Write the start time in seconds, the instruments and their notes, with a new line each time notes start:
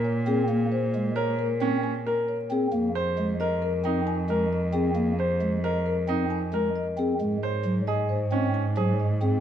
Already playing: cello A#2, grand piano A#4, marimba A#4
0.04 marimba C#5
0.27 pipe organ C4, marimba G#4
0.49 pipe organ A#3
0.72 marimba C5
0.94 pipe organ G#3
1.16 grand piano A#4, marimba C#5
1.39 marimba A#4
1.60 pipe organ C4, grand piano C#4, marimba C#5
1.83 marimba G#5
2.07 grand piano A#4, marimba A#4
2.28 marimba C#5
2.51 pipe organ C4, marimba G#4
2.73 cello F2, pipe organ A#3
2.95 grand piano C5, marimba C5
3.18 pipe organ G#3
3.40 grand piano A#4, marimba D#5
3.62 marimba A#4
3.84 pipe organ C4, grand piano D#4, marimba D#5
4.07 marimba G#5
4.29 pipe organ G#3, marimba A#4, grand piano A#4
4.53 marimba D#5
4.73 pipe organ C4, marimba G#4
4.95 pipe organ A#3
5.19 marimba C5, grand piano C5
5.41 pipe organ G#3
5.64 grand piano A#4, marimba D#5
5.86 marimba A#4
6.08 pipe organ C4, grand piano D#4, marimba D#5
6.30 marimba G#5
6.53 pipe organ G#3, marimba A#4, grand piano A#4
6.76 marimba D#5
6.98 pipe organ C4, marimba G#4
7.20 cello G#2, pipe organ G#3
7.43 grand piano C5, marimba C#5
7.64 pipe organ F#3
7.87 grand piano G#4, marimba D#5
8.09 marimba C5
8.32 pipe organ C4, grand piano C#4, marimba D#5
8.54 marimba G#5
8.76 pipe organ F#3, grand piano G#4, marimba C5
9.00 marimba D#5
9.21 pipe organ C4, marimba G#4